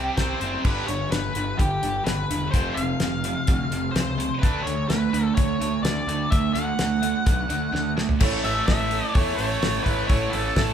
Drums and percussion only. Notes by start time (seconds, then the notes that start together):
0.17 kick, snare, closed hi-hat
0.41 closed hi-hat
0.65 kick, crash
0.88 closed hi-hat
1.12 snare, closed hi-hat
1.35 closed hi-hat
1.59 kick, closed hi-hat
1.83 closed hi-hat
2.07 snare, closed hi-hat
2.31 closed hi-hat
2.54 kick, closed hi-hat
2.77 closed hi-hat
3.00 snare, closed hi-hat
3.24 closed hi-hat
3.47 kick, closed hi-hat
3.72 closed hi-hat
3.96 snare, closed hi-hat
4.20 closed hi-hat
4.43 kick, closed hi-hat
4.67 closed hi-hat
4.90 snare, closed hi-hat
5.14 closed hi-hat
5.37 kick, closed hi-hat
5.62 closed hi-hat
5.85 snare, closed hi-hat
6.09 closed hi-hat
6.32 kick, closed hi-hat
6.55 closed hi-hat
6.79 snare, closed hi-hat
7.03 closed hi-hat
7.26 kick, closed hi-hat
7.50 closed hi-hat
7.75 snare
7.98 snare
8.09 floor tom
8.20 kick, crash
8.44 open hi-hat
8.68 kick, snare, open hi-hat
8.91 open hi-hat
9.15 kick, open hi-hat
9.38 open hi-hat
9.63 snare, open hi-hat
9.86 kick, open hi-hat
10.10 kick, open hi-hat
10.33 open hi-hat
10.56 kick, snare, open hi-hat